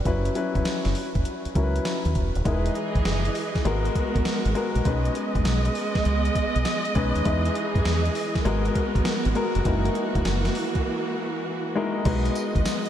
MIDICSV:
0, 0, Header, 1, 6, 480
1, 0, Start_track
1, 0, Key_signature, 5, "major"
1, 0, Tempo, 600000
1, 43, Time_signature, 4, 2, 24, 8
1, 10315, End_track
2, 0, Start_track
2, 0, Title_t, "Grand piano"
2, 0, Program_c, 0, 0
2, 0, Control_c, 0, 64, 127
2, 42, Note_on_c, 0, 54, 77
2, 45, Note_on_c, 0, 61, 70
2, 48, Note_on_c, 0, 64, 68
2, 51, Note_on_c, 0, 71, 87
2, 54, Control_c, 0, 64, 0
2, 171, Control_c, 0, 64, 127
2, 248, Note_off_c, 0, 54, 0
2, 250, Note_off_c, 0, 61, 0
2, 251, Note_off_c, 0, 64, 0
2, 253, Note_off_c, 0, 71, 0
2, 284, Note_on_c, 0, 54, 80
2, 286, Note_on_c, 0, 61, 80
2, 289, Note_on_c, 0, 64, 72
2, 292, Note_on_c, 0, 71, 92
2, 1048, Note_off_c, 0, 54, 0
2, 1050, Note_off_c, 0, 61, 0
2, 1051, Note_off_c, 0, 64, 0
2, 1052, Note_off_c, 0, 71, 0
2, 1241, Note_on_c, 0, 54, 70
2, 1246, Note_on_c, 0, 61, 66
2, 1249, Note_on_c, 0, 64, 69
2, 1251, Note_on_c, 0, 70, 65
2, 1303, Note_on_c, 0, 71, 80
2, 1317, Note_off_c, 0, 70, 0
2, 1836, Note_off_c, 0, 54, 0
2, 1838, Note_off_c, 0, 61, 0
2, 1840, Note_off_c, 0, 64, 0
2, 1867, Note_off_c, 0, 71, 0
2, 1961, Note_on_c, 0, 56, 73
2, 1964, Note_on_c, 0, 63, 70
2, 1967, Note_on_c, 0, 64, 72
2, 1970, Note_on_c, 0, 70, 62
2, 1973, Control_c, 0, 64, 0
2, 2022, Note_on_c, 0, 71, 81
2, 2036, Note_off_c, 0, 70, 0
2, 2117, Control_c, 0, 64, 127
2, 2727, Note_off_c, 0, 56, 0
2, 2728, Note_off_c, 0, 63, 0
2, 2730, Note_off_c, 0, 64, 0
2, 2757, Note_off_c, 0, 71, 0
2, 2921, Note_on_c, 0, 56, 92
2, 2924, Note_on_c, 0, 59, 81
2, 2928, Note_on_c, 0, 66, 84
2, 2931, Note_on_c, 0, 70, 99
2, 2934, Control_c, 0, 64, 0
2, 3074, Control_c, 0, 64, 127
2, 3531, Note_off_c, 0, 56, 0
2, 3532, Note_off_c, 0, 59, 0
2, 3534, Note_off_c, 0, 66, 0
2, 3536, Note_off_c, 0, 70, 0
2, 3640, Note_on_c, 0, 56, 86
2, 3644, Note_on_c, 0, 59, 78
2, 3646, Note_on_c, 0, 66, 84
2, 3651, Note_on_c, 0, 70, 94
2, 3848, Note_off_c, 0, 56, 0
2, 3850, Note_off_c, 0, 59, 0
2, 3850, Note_off_c, 0, 66, 0
2, 3853, Note_off_c, 0, 70, 0
2, 3883, Note_on_c, 0, 56, 73
2, 3885, Note_on_c, 0, 61, 64
2, 3889, Note_on_c, 0, 63, 69
2, 3892, Control_c, 0, 64, 0
2, 3892, Note_on_c, 0, 71, 83
2, 4027, Control_c, 0, 64, 127
2, 4648, Note_off_c, 0, 56, 0
2, 4649, Note_off_c, 0, 61, 0
2, 4651, Note_off_c, 0, 63, 0
2, 4652, Note_off_c, 0, 71, 0
2, 5563, Note_on_c, 0, 56, 88
2, 5566, Note_on_c, 0, 61, 85
2, 5570, Note_on_c, 0, 63, 74
2, 5572, Note_on_c, 0, 71, 98
2, 5769, Note_off_c, 0, 56, 0
2, 5770, Note_off_c, 0, 61, 0
2, 5772, Note_off_c, 0, 63, 0
2, 5774, Note_off_c, 0, 71, 0
2, 5802, Note_on_c, 0, 56, 73
2, 5805, Note_on_c, 0, 63, 67
2, 5808, Note_on_c, 0, 64, 77
2, 5812, Control_c, 0, 64, 0
2, 5812, Note_on_c, 0, 71, 83
2, 5939, Control_c, 0, 64, 127
2, 6567, Note_off_c, 0, 56, 0
2, 6569, Note_off_c, 0, 63, 0
2, 6571, Note_off_c, 0, 64, 0
2, 6572, Note_off_c, 0, 71, 0
2, 6761, Note_on_c, 0, 56, 98
2, 6765, Note_on_c, 0, 59, 79
2, 6767, Note_on_c, 0, 66, 81
2, 6771, Note_on_c, 0, 70, 97
2, 6775, Control_c, 0, 64, 0
2, 6921, Control_c, 0, 64, 127
2, 7371, Note_off_c, 0, 56, 0
2, 7373, Note_off_c, 0, 59, 0
2, 7374, Note_off_c, 0, 66, 0
2, 7376, Note_off_c, 0, 70, 0
2, 7482, Note_on_c, 0, 56, 86
2, 7484, Note_on_c, 0, 59, 75
2, 7487, Note_on_c, 0, 66, 82
2, 7491, Note_on_c, 0, 70, 102
2, 7688, Note_off_c, 0, 56, 0
2, 7690, Note_off_c, 0, 59, 0
2, 7691, Note_off_c, 0, 66, 0
2, 7693, Note_off_c, 0, 70, 0
2, 7722, Note_on_c, 0, 56, 73
2, 7726, Note_on_c, 0, 63, 77
2, 7729, Note_on_c, 0, 64, 72
2, 7732, Note_on_c, 0, 70, 86
2, 7734, Control_c, 0, 64, 0
2, 7854, Control_c, 0, 64, 127
2, 8487, Note_off_c, 0, 56, 0
2, 8489, Note_off_c, 0, 63, 0
2, 8491, Note_off_c, 0, 64, 0
2, 8493, Note_off_c, 0, 70, 0
2, 9404, Note_on_c, 0, 56, 88
2, 9408, Note_on_c, 0, 63, 81
2, 9411, Note_on_c, 0, 64, 79
2, 9413, Note_on_c, 0, 70, 97
2, 9610, Note_off_c, 0, 56, 0
2, 9612, Note_off_c, 0, 63, 0
2, 9613, Note_off_c, 0, 64, 0
2, 9614, Note_off_c, 0, 70, 0
2, 9643, Note_on_c, 0, 56, 77
2, 9647, Note_on_c, 0, 63, 69
2, 9650, Note_on_c, 0, 66, 67
2, 9653, Control_c, 0, 64, 0
2, 9653, Note_on_c, 0, 71, 89
2, 9778, Control_c, 0, 64, 127
2, 10315, Note_off_c, 0, 56, 0
2, 10315, Note_off_c, 0, 63, 0
2, 10315, Note_off_c, 0, 66, 0
2, 10315, Note_off_c, 0, 71, 0
2, 10315, End_track
3, 0, Start_track
3, 0, Title_t, "String section"
3, 0, Program_c, 1, 48
3, 1965, Note_on_c, 1, 68, 90
3, 1966, Note_on_c, 1, 52, 83
3, 1966, Note_on_c, 1, 75, 76
3, 2915, Note_off_c, 1, 52, 0
3, 2915, Note_off_c, 1, 68, 0
3, 2915, Note_off_c, 1, 75, 0
3, 2919, Note_on_c, 1, 59, 84
3, 2919, Note_on_c, 1, 66, 68
3, 2919, Note_on_c, 1, 70, 72
3, 2920, Note_on_c, 1, 56, 78
3, 3871, Note_off_c, 1, 59, 0
3, 3871, Note_off_c, 1, 66, 0
3, 3872, Note_off_c, 1, 56, 0
3, 3872, Note_off_c, 1, 70, 0
3, 3881, Note_on_c, 1, 56, 86
3, 3882, Note_on_c, 1, 59, 75
3, 3882, Note_on_c, 1, 75, 99
3, 5783, Note_off_c, 1, 56, 0
3, 5783, Note_off_c, 1, 59, 0
3, 5805, Note_on_c, 1, 52, 85
3, 5805, Note_on_c, 1, 68, 89
3, 6734, Note_off_c, 1, 75, 0
3, 6754, Note_off_c, 1, 52, 0
3, 6754, Note_off_c, 1, 68, 0
3, 6761, Note_on_c, 1, 70, 73
3, 6762, Note_on_c, 1, 56, 83
3, 6762, Note_on_c, 1, 66, 77
3, 6763, Note_on_c, 1, 59, 94
3, 7713, Note_off_c, 1, 56, 0
3, 7713, Note_off_c, 1, 59, 0
3, 7713, Note_off_c, 1, 70, 0
3, 7724, Note_on_c, 1, 52, 82
3, 7725, Note_on_c, 1, 58, 87
3, 9614, Note_off_c, 1, 66, 0
3, 9624, Note_off_c, 1, 52, 0
3, 9625, Note_off_c, 1, 58, 0
3, 9646, Note_on_c, 1, 56, 86
3, 9646, Note_on_c, 1, 75, 94
3, 9647, Note_on_c, 1, 59, 82
3, 10315, Note_off_c, 1, 56, 0
3, 10315, Note_off_c, 1, 59, 0
3, 10315, Note_off_c, 1, 75, 0
3, 10315, End_track
4, 0, Start_track
4, 0, Title_t, "Fingered electric bass"
4, 0, Program_c, 2, 33
4, 44, Note_on_c, 2, 30, 102
4, 227, Note_off_c, 2, 30, 0
4, 443, Note_on_c, 2, 28, 82
4, 504, Note_off_c, 2, 28, 0
4, 685, Note_on_c, 2, 30, 85
4, 745, Note_off_c, 2, 30, 0
4, 923, Note_on_c, 2, 30, 88
4, 984, Note_off_c, 2, 30, 0
4, 1244, Note_on_c, 2, 37, 90
4, 1427, Note_off_c, 2, 37, 0
4, 1644, Note_on_c, 2, 39, 85
4, 1704, Note_off_c, 2, 39, 0
4, 1724, Note_on_c, 2, 28, 86
4, 1847, Note_off_c, 2, 28, 0
4, 1884, Note_on_c, 2, 27, 86
4, 1944, Note_off_c, 2, 27, 0
4, 1964, Note_on_c, 2, 28, 99
4, 2147, Note_off_c, 2, 28, 0
4, 2362, Note_on_c, 2, 32, 90
4, 2424, Note_off_c, 2, 32, 0
4, 2442, Note_on_c, 2, 30, 87
4, 2626, Note_off_c, 2, 30, 0
4, 2923, Note_on_c, 2, 32, 113
4, 3107, Note_off_c, 2, 32, 0
4, 3324, Note_on_c, 2, 32, 90
4, 3384, Note_off_c, 2, 32, 0
4, 3565, Note_on_c, 2, 32, 91
4, 3625, Note_off_c, 2, 32, 0
4, 3805, Note_on_c, 2, 34, 95
4, 3866, Note_off_c, 2, 34, 0
4, 3883, Note_on_c, 2, 35, 107
4, 4067, Note_off_c, 2, 35, 0
4, 4282, Note_on_c, 2, 30, 96
4, 4344, Note_off_c, 2, 30, 0
4, 4365, Note_on_c, 2, 35, 97
4, 4548, Note_off_c, 2, 35, 0
4, 4846, Note_on_c, 2, 37, 96
4, 5029, Note_off_c, 2, 37, 0
4, 5247, Note_on_c, 2, 35, 84
4, 5306, Note_off_c, 2, 35, 0
4, 5565, Note_on_c, 2, 35, 99
4, 5687, Note_off_c, 2, 35, 0
4, 5726, Note_on_c, 2, 39, 81
4, 5786, Note_off_c, 2, 39, 0
4, 5805, Note_on_c, 2, 40, 117
4, 5988, Note_off_c, 2, 40, 0
4, 6203, Note_on_c, 2, 42, 100
4, 6264, Note_off_c, 2, 42, 0
4, 6286, Note_on_c, 2, 40, 97
4, 6468, Note_off_c, 2, 40, 0
4, 6764, Note_on_c, 2, 32, 98
4, 6947, Note_off_c, 2, 32, 0
4, 7163, Note_on_c, 2, 32, 92
4, 7224, Note_off_c, 2, 32, 0
4, 7406, Note_on_c, 2, 32, 92
4, 7466, Note_off_c, 2, 32, 0
4, 7646, Note_on_c, 2, 29, 92
4, 7706, Note_off_c, 2, 29, 0
4, 7723, Note_on_c, 2, 30, 113
4, 7907, Note_off_c, 2, 30, 0
4, 8123, Note_on_c, 2, 28, 97
4, 8184, Note_off_c, 2, 28, 0
4, 8205, Note_on_c, 2, 30, 81
4, 8388, Note_off_c, 2, 30, 0
4, 9644, Note_on_c, 2, 35, 104
4, 9827, Note_off_c, 2, 35, 0
4, 10044, Note_on_c, 2, 32, 90
4, 10104, Note_off_c, 2, 32, 0
4, 10315, End_track
5, 0, Start_track
5, 0, Title_t, "Muted fingered electric bass strokes"
5, 525, Note_on_c, 9, 29, 45
5, 605, Note_off_c, 9, 29, 0
5, 1166, Note_on_c, 9, 29, 50
5, 1246, Note_off_c, 9, 29, 0
5, 3404, Note_on_c, 9, 29, 50
5, 3484, Note_off_c, 9, 29, 0
5, 10315, End_track
6, 0, Start_track
6, 0, Title_t, "Drums"
6, 43, Note_on_c, 9, 36, 112
6, 43, Note_on_c, 9, 42, 76
6, 123, Note_off_c, 9, 36, 0
6, 123, Note_off_c, 9, 42, 0
6, 203, Note_on_c, 9, 42, 60
6, 282, Note_off_c, 9, 42, 0
6, 282, Note_on_c, 9, 42, 74
6, 362, Note_off_c, 9, 42, 0
6, 442, Note_on_c, 9, 36, 97
6, 444, Note_on_c, 9, 42, 45
6, 522, Note_off_c, 9, 36, 0
6, 522, Note_off_c, 9, 42, 0
6, 522, Note_on_c, 9, 42, 72
6, 523, Note_on_c, 9, 38, 115
6, 602, Note_off_c, 9, 42, 0
6, 603, Note_off_c, 9, 38, 0
6, 680, Note_on_c, 9, 38, 62
6, 681, Note_on_c, 9, 42, 49
6, 760, Note_off_c, 9, 38, 0
6, 760, Note_on_c, 9, 46, 82
6, 761, Note_off_c, 9, 42, 0
6, 840, Note_off_c, 9, 46, 0
6, 922, Note_on_c, 9, 42, 46
6, 923, Note_on_c, 9, 36, 92
6, 1002, Note_off_c, 9, 42, 0
6, 1002, Note_on_c, 9, 42, 76
6, 1003, Note_off_c, 9, 36, 0
6, 1082, Note_off_c, 9, 42, 0
6, 1163, Note_on_c, 9, 42, 56
6, 1243, Note_off_c, 9, 42, 0
6, 1243, Note_on_c, 9, 36, 100
6, 1243, Note_on_c, 9, 42, 78
6, 1323, Note_off_c, 9, 36, 0
6, 1323, Note_off_c, 9, 42, 0
6, 1405, Note_on_c, 9, 42, 55
6, 1481, Note_on_c, 9, 38, 116
6, 1483, Note_off_c, 9, 42, 0
6, 1483, Note_on_c, 9, 42, 73
6, 1561, Note_off_c, 9, 38, 0
6, 1563, Note_off_c, 9, 42, 0
6, 1642, Note_on_c, 9, 42, 52
6, 1721, Note_off_c, 9, 42, 0
6, 1721, Note_on_c, 9, 42, 62
6, 1724, Note_on_c, 9, 36, 94
6, 1801, Note_off_c, 9, 42, 0
6, 1804, Note_off_c, 9, 36, 0
6, 1883, Note_on_c, 9, 42, 62
6, 1963, Note_off_c, 9, 42, 0
6, 1963, Note_on_c, 9, 36, 117
6, 1963, Note_on_c, 9, 42, 76
6, 2043, Note_off_c, 9, 36, 0
6, 2043, Note_off_c, 9, 42, 0
6, 2125, Note_on_c, 9, 42, 57
6, 2203, Note_off_c, 9, 42, 0
6, 2203, Note_on_c, 9, 42, 71
6, 2283, Note_off_c, 9, 42, 0
6, 2362, Note_on_c, 9, 36, 99
6, 2364, Note_on_c, 9, 42, 46
6, 2441, Note_off_c, 9, 42, 0
6, 2441, Note_on_c, 9, 42, 69
6, 2442, Note_off_c, 9, 36, 0
6, 2443, Note_on_c, 9, 38, 122
6, 2521, Note_off_c, 9, 42, 0
6, 2523, Note_off_c, 9, 38, 0
6, 2603, Note_on_c, 9, 42, 51
6, 2681, Note_on_c, 9, 46, 80
6, 2683, Note_off_c, 9, 42, 0
6, 2761, Note_off_c, 9, 46, 0
6, 2842, Note_on_c, 9, 42, 44
6, 2843, Note_on_c, 9, 36, 87
6, 2845, Note_on_c, 9, 38, 68
6, 2922, Note_off_c, 9, 42, 0
6, 2922, Note_on_c, 9, 42, 74
6, 2923, Note_off_c, 9, 36, 0
6, 2925, Note_off_c, 9, 38, 0
6, 3002, Note_off_c, 9, 42, 0
6, 3083, Note_on_c, 9, 42, 58
6, 3163, Note_off_c, 9, 42, 0
6, 3163, Note_on_c, 9, 36, 99
6, 3164, Note_on_c, 9, 42, 82
6, 3243, Note_off_c, 9, 36, 0
6, 3244, Note_off_c, 9, 42, 0
6, 3323, Note_on_c, 9, 36, 89
6, 3326, Note_on_c, 9, 42, 57
6, 3402, Note_on_c, 9, 38, 102
6, 3403, Note_off_c, 9, 36, 0
6, 3404, Note_off_c, 9, 42, 0
6, 3404, Note_on_c, 9, 42, 80
6, 3482, Note_off_c, 9, 38, 0
6, 3484, Note_off_c, 9, 42, 0
6, 3564, Note_on_c, 9, 42, 56
6, 3642, Note_off_c, 9, 42, 0
6, 3642, Note_on_c, 9, 42, 64
6, 3722, Note_off_c, 9, 42, 0
6, 3804, Note_on_c, 9, 42, 64
6, 3882, Note_off_c, 9, 42, 0
6, 3882, Note_on_c, 9, 42, 83
6, 3883, Note_on_c, 9, 36, 122
6, 3962, Note_off_c, 9, 42, 0
6, 3963, Note_off_c, 9, 36, 0
6, 4043, Note_on_c, 9, 42, 59
6, 4121, Note_off_c, 9, 42, 0
6, 4121, Note_on_c, 9, 42, 78
6, 4201, Note_off_c, 9, 42, 0
6, 4282, Note_on_c, 9, 36, 99
6, 4284, Note_on_c, 9, 42, 47
6, 4360, Note_off_c, 9, 42, 0
6, 4360, Note_on_c, 9, 42, 73
6, 4362, Note_off_c, 9, 36, 0
6, 4362, Note_on_c, 9, 38, 118
6, 4440, Note_off_c, 9, 42, 0
6, 4442, Note_off_c, 9, 38, 0
6, 4522, Note_on_c, 9, 42, 53
6, 4601, Note_on_c, 9, 46, 76
6, 4602, Note_off_c, 9, 42, 0
6, 4681, Note_off_c, 9, 46, 0
6, 4762, Note_on_c, 9, 36, 94
6, 4762, Note_on_c, 9, 42, 44
6, 4764, Note_on_c, 9, 38, 69
6, 4842, Note_off_c, 9, 36, 0
6, 4842, Note_off_c, 9, 42, 0
6, 4842, Note_on_c, 9, 42, 77
6, 4844, Note_off_c, 9, 38, 0
6, 4922, Note_off_c, 9, 42, 0
6, 5002, Note_on_c, 9, 42, 59
6, 5082, Note_off_c, 9, 42, 0
6, 5083, Note_on_c, 9, 36, 98
6, 5084, Note_on_c, 9, 42, 81
6, 5163, Note_off_c, 9, 36, 0
6, 5164, Note_off_c, 9, 42, 0
6, 5245, Note_on_c, 9, 42, 59
6, 5321, Note_on_c, 9, 38, 115
6, 5323, Note_off_c, 9, 42, 0
6, 5323, Note_on_c, 9, 42, 87
6, 5401, Note_off_c, 9, 38, 0
6, 5403, Note_off_c, 9, 42, 0
6, 5482, Note_on_c, 9, 42, 53
6, 5562, Note_off_c, 9, 42, 0
6, 5562, Note_on_c, 9, 42, 64
6, 5564, Note_on_c, 9, 36, 91
6, 5642, Note_off_c, 9, 42, 0
6, 5644, Note_off_c, 9, 36, 0
6, 5723, Note_on_c, 9, 42, 62
6, 5803, Note_off_c, 9, 42, 0
6, 5803, Note_on_c, 9, 42, 80
6, 5804, Note_on_c, 9, 36, 118
6, 5883, Note_off_c, 9, 42, 0
6, 5884, Note_off_c, 9, 36, 0
6, 5963, Note_on_c, 9, 42, 61
6, 6043, Note_off_c, 9, 42, 0
6, 6043, Note_on_c, 9, 42, 78
6, 6123, Note_off_c, 9, 42, 0
6, 6202, Note_on_c, 9, 36, 95
6, 6205, Note_on_c, 9, 42, 44
6, 6282, Note_off_c, 9, 36, 0
6, 6282, Note_off_c, 9, 42, 0
6, 6282, Note_on_c, 9, 42, 72
6, 6284, Note_on_c, 9, 38, 124
6, 6362, Note_off_c, 9, 42, 0
6, 6364, Note_off_c, 9, 38, 0
6, 6444, Note_on_c, 9, 42, 54
6, 6522, Note_on_c, 9, 46, 82
6, 6524, Note_off_c, 9, 42, 0
6, 6602, Note_off_c, 9, 46, 0
6, 6683, Note_on_c, 9, 36, 90
6, 6683, Note_on_c, 9, 42, 49
6, 6685, Note_on_c, 9, 38, 73
6, 6763, Note_off_c, 9, 36, 0
6, 6763, Note_off_c, 9, 42, 0
6, 6763, Note_on_c, 9, 42, 71
6, 6765, Note_off_c, 9, 38, 0
6, 6843, Note_off_c, 9, 42, 0
6, 6923, Note_on_c, 9, 42, 55
6, 7003, Note_off_c, 9, 42, 0
6, 7003, Note_on_c, 9, 36, 97
6, 7003, Note_on_c, 9, 42, 85
6, 7083, Note_off_c, 9, 36, 0
6, 7083, Note_off_c, 9, 42, 0
6, 7162, Note_on_c, 9, 36, 94
6, 7165, Note_on_c, 9, 42, 54
6, 7241, Note_on_c, 9, 38, 116
6, 7242, Note_off_c, 9, 36, 0
6, 7243, Note_off_c, 9, 42, 0
6, 7243, Note_on_c, 9, 42, 79
6, 7321, Note_off_c, 9, 38, 0
6, 7323, Note_off_c, 9, 42, 0
6, 7402, Note_on_c, 9, 42, 52
6, 7482, Note_off_c, 9, 42, 0
6, 7482, Note_on_c, 9, 42, 61
6, 7562, Note_off_c, 9, 42, 0
6, 7641, Note_on_c, 9, 42, 67
6, 7721, Note_off_c, 9, 42, 0
6, 7721, Note_on_c, 9, 42, 86
6, 7723, Note_on_c, 9, 36, 118
6, 7801, Note_off_c, 9, 42, 0
6, 7803, Note_off_c, 9, 36, 0
6, 7883, Note_on_c, 9, 42, 60
6, 7962, Note_off_c, 9, 42, 0
6, 7962, Note_on_c, 9, 42, 73
6, 8042, Note_off_c, 9, 42, 0
6, 8121, Note_on_c, 9, 36, 92
6, 8123, Note_on_c, 9, 42, 52
6, 8201, Note_off_c, 9, 36, 0
6, 8201, Note_off_c, 9, 42, 0
6, 8201, Note_on_c, 9, 42, 76
6, 8203, Note_on_c, 9, 38, 127
6, 8281, Note_off_c, 9, 42, 0
6, 8283, Note_off_c, 9, 38, 0
6, 8361, Note_on_c, 9, 38, 66
6, 8362, Note_on_c, 9, 42, 51
6, 8440, Note_on_c, 9, 46, 77
6, 8441, Note_off_c, 9, 38, 0
6, 8442, Note_off_c, 9, 42, 0
6, 8520, Note_off_c, 9, 46, 0
6, 8600, Note_on_c, 9, 42, 47
6, 8602, Note_on_c, 9, 36, 90
6, 8680, Note_off_c, 9, 42, 0
6, 8682, Note_off_c, 9, 36, 0
6, 9643, Note_on_c, 9, 36, 123
6, 9643, Note_on_c, 9, 42, 78
6, 9643, Note_on_c, 9, 49, 106
6, 9723, Note_off_c, 9, 36, 0
6, 9723, Note_off_c, 9, 42, 0
6, 9723, Note_off_c, 9, 49, 0
6, 9803, Note_on_c, 9, 42, 60
6, 9883, Note_off_c, 9, 42, 0
6, 9883, Note_on_c, 9, 42, 77
6, 9884, Note_on_c, 9, 54, 63
6, 9963, Note_off_c, 9, 42, 0
6, 9964, Note_off_c, 9, 54, 0
6, 10043, Note_on_c, 9, 36, 99
6, 10045, Note_on_c, 9, 42, 48
6, 10123, Note_off_c, 9, 36, 0
6, 10123, Note_off_c, 9, 42, 0
6, 10123, Note_on_c, 9, 42, 74
6, 10124, Note_on_c, 9, 54, 96
6, 10125, Note_on_c, 9, 38, 120
6, 10203, Note_off_c, 9, 42, 0
6, 10204, Note_off_c, 9, 54, 0
6, 10205, Note_off_c, 9, 38, 0
6, 10284, Note_on_c, 9, 42, 52
6, 10315, Note_off_c, 9, 42, 0
6, 10315, End_track
0, 0, End_of_file